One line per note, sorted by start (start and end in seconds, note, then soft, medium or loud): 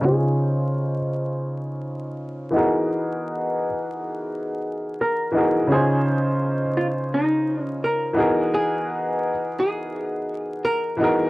0.01 0.95 C#3 medium
0.01 0.96 C#4 medium
0.01 0.97 D#4 medium
0.05 0.98 F4 medium
0.05 2.48 G#4 medium
0.05 0.98 C5 medium
2.50 3.65 E3 medium
2.50 3.66 B3 medium
2.50 3.67 D#4 medium
2.55 3.67 F#4 medium
2.55 3.68 G#4 medium
2.55 3.69 A#4 medium
5.01 5.71 A#4 medium
5.32 5.57 E3 medium
5.32 5.58 B3 medium
5.32 5.59 D#4 medium
5.36 5.60 F#4 medium
5.36 5.60 G#4 medium
5.36 5.61 A#4 medium
5.67 6.61 C#3 medium
5.67 6.61 C#4 medium
5.67 6.62 D#4 medium
5.72 6.63 F4 medium
5.72 6.80 G#4 loud
5.72 6.64 C5 medium
6.77 6.86 F4 medium
7.14 7.63 D#4 medium
7.63 7.79 C#4 medium
7.84 8.54 A#4 medium
8.13 9.29 E3 medium
8.13 9.30 B3 medium
8.13 9.31 D#4 medium
8.13 9.31 F#4 medium
8.18 9.32 G#4 medium
8.18 9.33 A#4 medium
8.54 9.55 G#4 medium
9.60 10.96 G#4 medium
10.65 11.30 A#4 medium
10.97 11.22 E3 medium
10.97 11.23 B3 medium
10.97 11.24 D#4 medium
11.01 11.24 F#4 medium
11.01 11.25 G#4 medium
11.01 11.26 A#4 medium